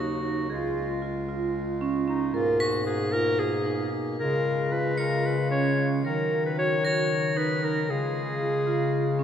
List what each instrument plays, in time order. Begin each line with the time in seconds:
Already playing: bass clarinet D#2, harmonium C#3 F#3 D#4, vibraphone D#4, crotales A#6
0.00 clarinet F#4
0.23 vibraphone D#4
0.50 bass clarinet C#2, harmonium G#3 F4, clarinet F4, vibraphone G#4
1.02 vibraphone F4
1.29 vibraphone F4
1.81 vibraphone C#4
2.08 vibraphone C#4, clarinet D#4
2.34 bass clarinet G#2, harmonium B2 A#3 G#4, clarinet F4, vibraphone A#4
2.60 clarinet F#4, crotales B6
2.86 vibraphone F#4, clarinet G#4
3.12 vibraphone F4, clarinet A#4
3.39 clarinet G#4
3.66 vibraphone D#4
3.93 vibraphone D#4
4.19 bass clarinet C#3, harmonium C#3 G#3 F4, vibraphone G#4, clarinet A#4
4.72 vibraphone F4, clarinet B4
4.98 vibraphone F4, clarinet A#4, crotales C#7
5.26 clarinet B4
5.51 vibraphone C#4, clarinet C#5
5.78 vibraphone C#4
6.05 bass clarinet D#3, harmonium F#3 D#4, vibraphone A#4, clarinet A#4
6.46 clarinet B4
6.57 vibraphone F#4, clarinet C#5
6.84 vibraphone F#4, clarinet C#5, crotales A#6
7.36 vibraphone D#4, clarinet B4
7.62 vibraphone D#4, clarinet A#4
7.89 harmonium C#3 G#3 F4, bass clarinet C#3, vibraphone G#4, clarinet G#4
8.41 vibraphone F4
8.67 vibraphone F4
9.19 vibraphone C#4